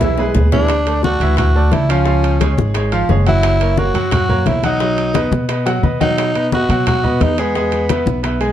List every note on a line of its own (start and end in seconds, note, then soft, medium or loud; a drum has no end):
0.00 0.31 B1 medium
0.00 0.15 E3 medium
0.00 0.32 E4 medium
0.00 0.16 E4 medium
0.00 0.16 E5 medium
0.00 high bongo medium
0.00 low conga medium
0.00 low timbale loud
0.18 0.46 G#3 medium
0.18 0.47 G#4 medium
0.18 0.47 B4 medium
0.18 low bongo medium
0.18 low timbale medium
0.35 1.15 D2 medium
0.35 low bongo medium
0.35 low conga medium
0.35 low timbale medium
0.52 0.66 E3 medium
0.52 1.00 D4 medium
0.52 0.66 E4 medium
0.52 0.66 E5 medium
0.52 low bongo medium
0.52 low conga medium
0.52 low timbale loud
0.68 high bongo medium
0.68 high conga soft
0.68 high timbale medium
0.86 1.01 A3 medium
0.86 1.01 A4 medium
0.86 1.01 D5 medium
0.86 high bongo soft
0.86 high conga soft
0.86 high timbale medium
1.03 1.19 A3 medium
1.03 1.36 F#4 medium
1.03 1.19 A4 medium
1.03 1.19 D5 medium
1.03 high bongo medium
1.03 high conga medium
1.20 1.68 D2 medium
1.20 1.50 E3 medium
1.20 1.50 E4 medium
1.20 1.50 E5 medium
1.20 high bongo soft
1.20 high conga soft
1.20 high timbale medium
1.37 1.74 F#4 medium
1.37 high bongo medium
1.37 high conga soft
1.37 low conga medium
1.37 high timbale medium
1.55 1.83 A3 medium
1.55 1.84 A4 medium
1.55 1.84 D5 medium
1.55 high conga soft
1.72 2.52 C#2 medium
1.72 1.92 E4 medium
1.72 high bongo soft
1.72 low bongo medium
1.72 high conga medium
1.72 high timbale medium
1.89 2.03 F3 medium
1.89 2.59 C#4 medium
1.89 2.04 F4 medium
1.89 2.04 F5 medium
1.89 high bongo soft
1.89 high timbale medium
2.06 2.35 F3 medium
2.06 2.35 F4 medium
2.06 2.35 F5 medium
2.06 high bongo medium
2.06 high conga soft
2.23 high bongo soft
2.23 high conga soft
2.23 high timbale medium
2.41 2.69 G#3 medium
2.41 2.69 G#4 medium
2.41 2.70 C#5 medium
2.41 high bongo medium
2.41 high conga medium
2.41 high timbale medium
2.57 3.06 G#1 medium
2.57 high bongo soft
2.57 high conga medium
2.74 2.89 G#3 medium
2.74 2.89 G#4 medium
2.74 2.90 C#5 medium
2.74 high bongo medium
2.74 high conga soft
2.74 high timbale medium
2.92 3.06 F3 medium
2.92 3.06 F4 medium
2.92 3.07 F5 medium
2.92 high conga soft
2.92 high timbale medium
3.09 3.89 F#1 medium
3.09 3.23 G#3 medium
3.09 3.24 G#4 medium
3.09 3.24 C#5 medium
3.09 high bongo soft
3.09 low bongo loud
3.09 high conga medium
3.26 3.55 F#3 medium
3.26 3.80 E4 loud
3.26 3.55 F#4 medium
3.26 3.55 F#5 medium
3.26 high bongo soft
3.26 high conga medium
3.26 high timbale medium
3.43 high bongo medium
3.43 high conga soft
3.43 high timbale medium
3.60 3.75 A#3 medium
3.60 3.75 A#4 medium
3.60 3.75 C#5 medium
3.60 high bongo soft
3.60 high conga soft
3.60 high timbale medium
3.77 3.92 A#3 medium
3.77 4.12 F#4 medium
3.77 3.92 A#4 medium
3.77 3.93 C#5 medium
3.77 high bongo medium
3.77 high conga loud
3.94 4.43 F#2 medium
3.94 4.23 F#3 medium
3.94 4.23 F#4 medium
3.94 4.23 F#5 medium
3.94 high bongo soft
3.94 high conga soft
3.94 high timbale medium
4.11 4.49 F#4 loud
4.11 high bongo medium
4.11 high conga soft
4.11 low conga medium
4.11 high timbale loud
4.29 4.57 A#3 medium
4.29 4.58 A#4 medium
4.29 4.58 C#5 medium
4.29 high conga soft
4.29 low conga medium
4.46 5.26 B1 medium
4.46 4.64 E4 medium
4.46 high bongo soft
4.46 low bongo medium
4.46 high conga medium
4.46 high timbale medium
4.63 4.78 F#3 medium
4.63 5.29 D#4 medium
4.63 4.78 F#4 medium
4.63 4.78 F#5 medium
4.63 high bongo soft
4.63 high conga medium
4.63 high timbale medium
4.80 5.09 F#3 medium
4.80 5.09 F#4 medium
4.80 5.09 F#5 medium
4.80 high bongo medium
4.80 high conga soft
4.97 high bongo soft
4.97 high conga soft
4.97 high timbale medium
5.14 5.43 B3 medium
5.14 5.43 B4 medium
5.14 5.43 D#5 medium
5.14 high bongo medium
5.14 high conga medium
5.14 high timbale medium
5.31 5.80 B2 medium
5.31 high bongo soft
5.31 high conga medium
5.49 5.63 B3 medium
5.49 5.63 B4 medium
5.49 5.63 D#5 medium
5.49 high bongo medium
5.49 high conga soft
5.49 high timbale loud
5.66 5.80 F#3 medium
5.66 5.80 F#4 medium
5.66 5.81 F#5 medium
5.66 high bongo medium
5.66 high conga soft
5.66 high timbale medium
5.83 6.64 B2 medium
5.83 5.97 B3 medium
5.83 5.97 B4 medium
5.83 5.98 D#5 medium
5.83 high conga medium
6.00 6.29 F#3 medium
6.00 6.49 D#4 loud
6.00 6.29 F#4 medium
6.00 6.29 F#5 medium
6.00 low bongo medium
6.00 high conga medium
6.00 high timbale medium
6.18 high bongo medium
6.18 high conga soft
6.18 high timbale loud
6.35 6.49 B3 medium
6.35 6.49 B4 medium
6.35 6.49 D#5 medium
6.35 high bongo soft
6.35 high conga soft
6.35 high timbale medium
6.52 6.67 B3 medium
6.52 6.85 F#4 loud
6.52 6.67 B4 medium
6.52 6.67 D#5 medium
6.52 high bongo medium
6.52 high conga medium
6.69 7.17 B2 medium
6.69 6.98 F#3 medium
6.69 6.98 F#4 medium
6.69 6.98 F#5 medium
6.69 high bongo soft
6.69 high conga soft
6.69 high timbale medium
6.87 7.24 F#4 loud
6.87 high bongo medium
6.87 high conga soft
6.87 low conga medium
6.87 high timbale medium
7.04 7.32 B3 medium
7.04 7.32 B4 medium
7.04 7.32 D#5 medium
7.04 high conga soft
7.04 low conga medium
7.21 8.01 E2 medium
7.21 7.41 D#4 medium
7.21 high bongo soft
7.21 low bongo medium
7.21 high conga medium
7.21 high timbale medium
7.21 low timbale medium
7.38 7.52 G#3 medium
7.38 8.07 B3 medium
7.38 7.52 G#4 medium
7.38 7.53 G#5 medium
7.38 high bongo soft
7.38 high timbale medium
7.55 7.84 G#3 medium
7.55 7.84 G#4 medium
7.55 7.84 G#5 medium
7.55 high bongo medium
7.55 high conga soft
7.72 high bongo soft
7.72 high conga soft
7.72 high timbale medium
7.89 8.18 B3 medium
7.89 8.18 B4 medium
7.89 8.18 E5 medium
7.89 high bongo medium
7.89 high conga medium
7.89 high timbale medium
8.06 8.52 B1 medium
8.06 high bongo soft
8.06 high conga medium
8.23 8.37 B3 medium
8.23 8.38 B4 medium
8.23 8.38 E5 medium
8.23 high bongo medium
8.23 high conga soft
8.23 high timbale medium
8.41 8.52 G#3 medium
8.41 8.52 G#4 medium
8.41 8.52 G#5 medium
8.41 high conga soft
8.41 high timbale medium